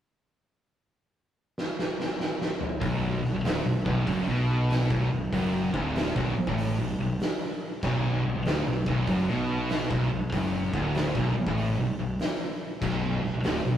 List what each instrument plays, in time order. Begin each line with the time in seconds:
1.58 snare
1.79 snare
2.00 snare
2.20 snare
2.41 snare
2.61 mid tom
2.81 fingered electric bass B0, distorted electric guitar B1, kick, open hi-hat
3.24 fingered electric bass B0, distorted electric guitar B1, snare
3.34 fingered electric bass B0, distorted electric guitar B1
3.44 fingered electric bass D1, distorted electric guitar D2, snare, open hi-hat
3.66 fingered electric bass B0, distorted electric guitar B1
3.86 fingered electric bass B0, distorted electric guitar B1, kick
4.07 fingered electric bass F#1, distorted electric guitar F#2, kick, open hi-hat
4.27 fingered electric bass B1, distorted electric guitar B2
4.70 snare, open hi-hat
4.90 fingered electric bass B0, distorted electric guitar B1, kick
5.11 fingered electric bass B0, distorted electric guitar B1
5.32 fingered electric bass F#1, distorted electric guitar F#2, kick, open hi-hat
5.74 fingered electric bass D1, distorted electric guitar D2, kick
5.96 snare, open hi-hat
6.15 fingered electric bass B0, distorted electric guitar B1, kick
6.36 muted distorted electric guitar stroke, muted fingered electric bass stroke
6.47 fingered electric bass A1, distorted electric guitar A2, kick
6.58 open hi-hat
6.78 fingered electric bass B0, distorted electric guitar B1
6.99 fingered electric bass B0, distorted electric guitar B1
7.20 snare, open hi-hat
7.83 fingered electric bass B0, distorted electric guitar B1, kick, crash
8.25 fingered electric bass B0, distorted electric guitar B1
8.36 fingered electric bass B0, distorted electric guitar B1
8.45 fingered electric bass D1, distorted electric guitar D2, snare, open hi-hat
8.66 fingered electric bass B0, distorted electric guitar B1
8.86 fingered electric bass B0, distorted electric guitar B1, kick
9.07 fingered electric bass F#1, distorted electric guitar F#2, kick, open hi-hat
9.29 fingered electric bass B1, distorted electric guitar B2
9.69 snare, open hi-hat
9.91 fingered electric bass B0, distorted electric guitar B1, kick
10.12 fingered electric bass B0, distorted electric guitar B1
10.32 fingered electric bass F#1, distorted electric guitar F#2, kick, open hi-hat
10.73 fingered electric bass D1, distorted electric guitar D2, kick, snare
10.95 snare, open hi-hat
11.15 fingered electric bass B0, distorted electric guitar B1, kick
11.37 muted distorted electric guitar stroke, muted fingered electric bass stroke
11.47 fingered electric bass A1, distorted electric guitar A2, kick
11.58 open hi-hat
11.78 fingered electric bass B0, distorted electric guitar B1
11.99 fingered electric bass B0, distorted electric guitar B1
12.19 snare, open hi-hat
12.82 fingered electric bass B0, distorted electric guitar B1, kick, crash
13.23 fingered electric bass B0, distorted electric guitar B1, snare
13.33 fingered electric bass B0, distorted electric guitar B1
13.43 fingered electric bass D1, distorted electric guitar D2, snare, open hi-hat
13.64 fingered electric bass B0, distorted electric guitar B1